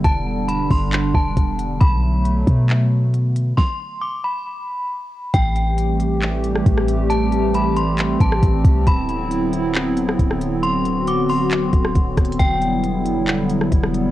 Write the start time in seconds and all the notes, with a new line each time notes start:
Already playing: D3 G3 B3
0.04 E1 D4 A5, kick, closed hi-hat
0.48 B5, closed hi-hat
0.71 G1 C6, kick, open hi-hat
0.93 clap, closed hi-hat
1.15 E1 A5, kick
1.37 E1, kick, closed hi-hat
1.59 closed hi-hat
1.81 B1 F#3 A3 B5, kick, closed hi-hat
2.25 closed hi-hat
2.47 B2, kick, closed hi-hat
2.69 clap, closed hi-hat
3.14 closed hi-hat
3.36 closed hi-hat
3.57 C6, kick, snare
4.01 D6
4.24 B5
5.34 A1 E3 G3 A3 C4 G4 G5, kick, closed hi-hat
5.56 closed hi-hat
5.78 closed hi-hat
6.00 closed hi-hat
6.22 clap, closed hi-hat
6.44 closed hi-hat
6.56 cross-stick
6.66 A1, kick, closed hi-hat
6.78 cross-stick
6.88 closed hi-hat
7.10 A5, closed hi-hat
7.32 closed hi-hat
7.54 B5, closed hi-hat
7.77 C6, closed hi-hat
7.99 clap, closed hi-hat
8.20 A1 A5, kick, closed hi-hat
8.32 cross-stick
8.43 A1, kick, closed hi-hat
8.64 C2, kick, closed hi-hat
8.86 D1 D3 F#3 B3 E4 B5, kick, closed hi-hat
9.09 closed hi-hat
9.31 closed hi-hat
9.53 closed hi-hat
9.75 clap, closed hi-hat
9.97 closed hi-hat
10.09 cross-stick
10.19 D1, kick, closed hi-hat
10.31 cross-stick
10.41 closed hi-hat
10.63 F#4 C6, closed hi-hat
10.85 closed hi-hat
11.07 D6, closed hi-hat
11.29 C6, open hi-hat
11.51 clap, closed hi-hat
11.73 D1, kick, closed hi-hat
11.85 cross-stick
11.95 D1, kick, closed hi-hat
12.17 D1, kick, cross-stick, closed hi-hat
12.25 closed hi-hat
12.32 closed hi-hat
12.39 E1 G3 E4 G5, kick, closed hi-hat
12.62 closed hi-hat
12.84 closed hi-hat
13.06 closed hi-hat
13.28 clap, closed hi-hat
13.50 closed hi-hat
13.61 cross-stick
13.72 E1, kick, closed hi-hat
13.84 cross-stick
13.94 closed hi-hat